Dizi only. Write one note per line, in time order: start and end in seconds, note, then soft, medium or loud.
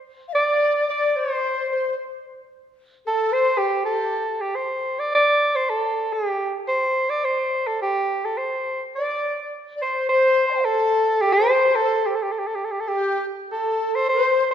0.28 0.34 F5 medium
0.33 0.87 D5 medium
0.88 1.10 D5 medium
1.10 1.17 D5 medium
1.16 1.70 C5 medium
1.71 1.95 C5 medium
3.05 3.33 A4 medium
3.32 3.60 C5 medium
3.59 3.87 G4 medium
3.87 4.27 G4 medium
8.97 9.52 D5 medium
9.76 9.84 D5 medium
9.83 10.11 C5 medium
10.12 10.47 C5 medium
10.47 10.51 D5 medium
10.47 10.53 A5 soft
10.47 10.49 C6 soft
10.53 10.61 F5 soft
10.53 10.56 G5 soft
10.61 10.65 D5 soft
10.66 11.24 A4 medium
10.66 10.69 C5 soft
11.24 11.28 G4 medium
11.24 11.34 A4 medium
11.32 11.41 G4 medium
11.39 11.83 C5 medium
11.82 12.10 A4 medium
12.85 12.94 A4 medium
12.92 13.25 G4 medium
13.53 14.10 A4 medium
14.09 14.48 C5 medium
14.49 14.54 C5 medium